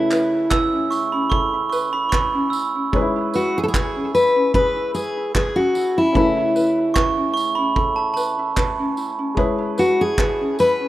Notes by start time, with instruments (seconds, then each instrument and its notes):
Already playing: upright piano C#3 A3 C#4 E4 B4, ukulele E4 A4 B4, steel-string acoustic guitar E4
0.11 ukulele B4, clap, tambourine
0.34 ukulele E4
0.50 ukulele B4, glockenspiel E6, kick, clap
0.73 ukulele C#4
0.91 ukulele E4, glockenspiel C#6, tambourine
1.12 ukulele C#4, glockenspiel B5
1.30 ukulele A4, glockenspiel C#6, kick
1.53 ukulele E4
1.70 ukulele B4, glockenspiel C#6, tambourine
1.93 ukulele E4, glockenspiel B5
2.09 ukulele B4, glockenspiel C#6, kick, clap
2.34 ukulele C#4
2.50 ukulele E4, glockenspiel E6, tambourine
2.75 ukulele C#4
2.92 upright piano G#3 C#4 D#4 B4, ukulele G#4, kick
3.02 upright piano E4
3.16 ukulele E4
3.34 steel-string acoustic guitar F#4, ukulele B4, tambourine
3.56 ukulele E4, steel-string acoustic guitar G#4
3.63 steel-string acoustic guitar A4
3.68 steel-string acoustic guitar G#4
3.74 ukulele B4, kick, clap
3.96 ukulele C#4
4.15 ukulele E4, steel-string acoustic guitar B4, tambourine
4.36 ukulele C#4
4.54 ukulele G#4, steel-string acoustic guitar B4, kick
4.76 ukulele E4
4.95 steel-string acoustic guitar G#4, ukulele B4, tambourine
5.17 ukulele E4
5.35 steel-string acoustic guitar G#4, ukulele B4, kick, clap
5.56 ukulele C#4, steel-string acoustic guitar F#4
5.75 ukulele E4, tambourine
5.97 ukulele C#4, steel-string acoustic guitar E4
6.13 upright piano C#3 A3 C#4 E4 B4, steel-string acoustic guitar E4, ukulele A4, kick
6.37 ukulele E4
6.55 ukulele B4, tambourine
6.78 ukulele E4
6.94 ukulele B4, glockenspiel C#6, kick, clap
7.17 ukulele C#4
7.34 ukulele E4, glockenspiel C#6, tambourine
7.55 ukulele C#4, glockenspiel B5
7.75 ukulele A4, kick
7.96 ukulele E4, glockenspiel A5
8.14 ukulele B4, glockenspiel A5, tambourine
8.39 ukulele E4
8.57 ukulele B4, kick, clap
8.79 ukulele C#4
8.97 ukulele E4, tambourine
9.19 ukulele C#4
9.35 upright piano G#3 C#4 E4, ukulele G#4, kick
9.39 upright piano B4
9.58 ukulele E4
9.77 steel-string acoustic guitar F#4, ukulele B4, tambourine
10.01 ukulele E4, steel-string acoustic guitar G#4
10.18 ukulele B4, kick, clap
10.41 ukulele C#4
10.59 ukulele E4, steel-string acoustic guitar B4, tambourine
10.80 ukulele C#4